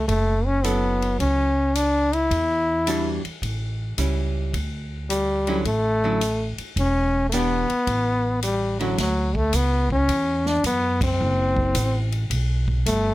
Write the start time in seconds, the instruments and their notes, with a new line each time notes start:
0.08 upright bass F#1, trombone A3, kick, ride
0.46 trombone C#4
0.64 hollow-body jazz guitar F#3 C#4 E4 A4, trombone B3, hi-hat pedal, ride
1.02 ride
1.20 upright bass C#2, trombone C#4, kick, ride
1.75 trombone D4, hi-hat pedal, ride
2.13 trombone E4, ride
2.31 upright bass E2, kick, ride
2.87 hollow-body jazz guitar E3 G3 D4 F#4, hi-hat pedal, ride
3.25 muted upright bass stroke, ride
3.42 upright bass A1, kick, ride
3.98 upright bass C#2, hollow-body jazz guitar G3 C#4 E4, hi-hat pedal, ride
4.53 upright bass D2, kick, ride
5.10 trombone G3, hi-hat pedal, ride
5.47 hollow-body jazz guitar D3 F#3 C#4 E4, ride
5.65 upright bass A1, trombone A3, kick, ride
6.03 hollow-body jazz guitar D3 F#3 C#4 E4
6.21 hi-hat pedal, ride
6.58 muted upright bass stroke, ride
6.76 upright bass E1, trombone C#4, kick, ride
7.29 hollow-body jazz guitar E3, trombone A3, hi-hat pedal, ride
7.33 hollow-body jazz guitar B3 D4 G4, trombone B3
7.70 muted upright bass stroke, ride
7.87 upright bass A1, kick, ride
8.42 trombone G3, hi-hat pedal, ride
8.79 hollow-body jazz guitar D3 F#3 C#4 E4, trombone F#3, ride
8.98 upright bass D2, trombone F#3, kick, snare, ride
9.35 trombone A3, kick
9.53 upright bass C#2, trombone B3, kick, hi-hat pedal, ride
9.90 trombone C#4, kick
10.08 upright bass E2, kick, ride
10.46 trombone D4, snare
10.64 upright bass F#2, trombone B3, kick, hi-hat pedal, ride
11.01 trombone C4, kick, ride
11.21 upright bass F#1
11.56 kick
11.75 upright bass A1, kick, hi-hat pedal, ride
12.12 ride
12.30 upright bass B1, kick, ride
12.68 kick
12.86 upright bass G1, trombone A3, kick, hi-hat pedal, ride